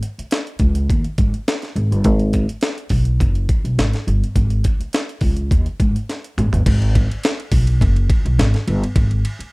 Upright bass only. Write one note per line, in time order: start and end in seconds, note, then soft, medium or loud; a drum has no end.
0.18 muted upright bass stroke soft
0.60 0.86 C#2 medium
0.89 1.03 D#2 medium
1.18 1.32 G#2 medium
1.76 1.91 G#1 medium
1.91 2.04 G1 medium
2.04 2.44 G#1 medium
2.90 3.17 B1 medium
3.20 3.46 F#1 medium
3.64 3.77 B1 medium
3.78 3.92 G#1 medium
4.07 4.21 G1 loud
4.35 4.61 G#1 medium
4.80 muted upright bass stroke soft
5.21 5.48 C#2 medium
5.51 5.65 D#2 medium
5.80 5.94 G#2 medium
6.38 6.51 G#1 loud
6.53 6.65 G1 medium
6.66 7.06 G#1 medium
7.51 7.78 B1 medium
7.81 8.07 F#1 loud
8.25 8.37 B1 medium
8.39 8.52 G#1 loud
8.67 8.81 G1 loud
8.96 9.22 G#1 medium
9.39 muted upright bass stroke soft